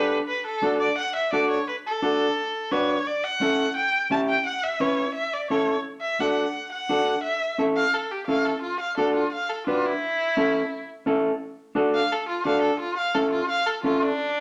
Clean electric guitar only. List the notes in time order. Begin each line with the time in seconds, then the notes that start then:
Already playing: D4 G4 A4
0.62 D4 F#4 A4
1.33 D4 F#4 A4
2.02 D4 F#4 A4
2.72 D4 F#4 B4
3.41 C#4 E4 A4
4.11 C#4 E4 G4
4.80 C#4 E4 B4
5.50 C#4 E4 A4
6.20 D4 F#4 A4
6.89 D4 F#4 A4
7.58 C#4 E4 A4
8.28 C#4 E4 A4
8.97 D4 F#4 A4
9.67 D4 F#4 B4
10.37 C#4 E4 A4
11.06 C#4 E4 A4
11.75 D4 F#4 A4
12.45 D4 F#4 A4
13.15 C#4 E4 A4
13.84 C#4 E4 A4